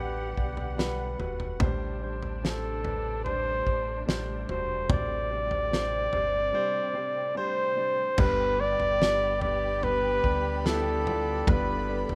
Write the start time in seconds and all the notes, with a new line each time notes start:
Already playing: A1 B2 D3 G3 B3 F#4 G4 B4 F#5
0.35 B1 G3 D5 F#5, kick
0.57 floor tom
0.77 G3 B4 F#5, snare
1.18 E1 G3 F#4 B4, floor tom
1.40 floor tom
1.60 A1 A2 C3 G3 A3 D4 C5, kick, floor tom
2.02 G3 D4 C5
2.23 floor tom
2.43 G3 D4 A4 C5, snare
2.84 G3 D4 B4, floor tom
3.24 G3 D4 C5, floor tom
3.66 A1 G3 D4 C5, kick
4.06 A1 G3 D4 C5, snare
4.48 E1 G3 D4 F#4 C5, floor tom
4.88 A1 A2 G3 C4 D4 C5 D5, kick, floor tom
5.30 G3 D4 C5
5.51 floor tom
5.71 G3 D4 C5, snare
6.12 G1 G3 D4 C5, floor tom
6.53 G3 D4 C5
6.94 G3 D4 C5
7.35 G3 D4 C5
7.76 G3 D4 D5
8.17 G1 G2 D3 G3 B3 D4 G4 B4 D5 B5, kick, floor tom, crash
8.58 G3 B3 D4 B4 D5
8.80 G1, floor tom
9.00 G3 B3 D4 B4, snare
9.41 G3 B3 D4 B4 D5, floor tom
9.82 G3 B3 D4 B4, floor tom
10.24 D2 G3 B3 D4 B4, kick
10.60 B4
10.64 G3 B3 D4 E4 A4, snare
11.04 G3 B3 D4 F4, floor tom
11.46 G1 G2 D3 G3 B3 D4 A4 B4, kick, floor tom
11.88 G3 B3 D4 B4
12.09 G1, floor tom